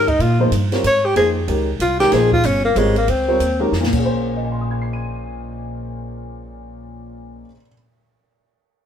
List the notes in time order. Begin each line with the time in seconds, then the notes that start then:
Already playing: G#2 A#4
0.08 D#4, kick, ride
0.19 A#2 F4, ride
0.39 F3 A#3 D#4 G#4 C5
0.51 G2, hi-hat pedal, ride
0.72 G3 C4 F4 A#4 C#5, snare, ride
0.84 G#2 C#5, hi-hat pedal, ride
1.05 G4
1.15 F2 F3 A#3 D#4 G#4 C5, ride
1.47 C#2 D#3 G#3 C#4 G4 A#4, ride
1.79 C2 F4, hi-hat pedal, ride
2.00 D#3 G#3 C#4 G4 A#4, snare, ride
2.12 A#1 F3 A#3 D#4 G#4 C5, snare, ride
2.32 F4, kick
2.44 G1 C#4, hi-hat pedal, ride
2.65 A#3
2.75 G#1 G3 G#3 C4 F4 A#4 C#5, hi-hat pedal, ride
2.96 A#3, ride
3.08 C#2 C4, ride
3.28 G3 C4 F4 A#4 C#5
3.40 D#2, hi-hat pedal, ride
3.60 D#3 G#3 C#4 G4 A#4
3.72 F2, snare
3.80 A#2, snare
3.87 A#3
3.92 A#1 C#4, kick, crash
3.99 G#4
4.05 C5
4.36 D#5
4.44 G#5
4.52 C6
4.61 D#6
4.71 G#6
4.82 C7
4.93 D#7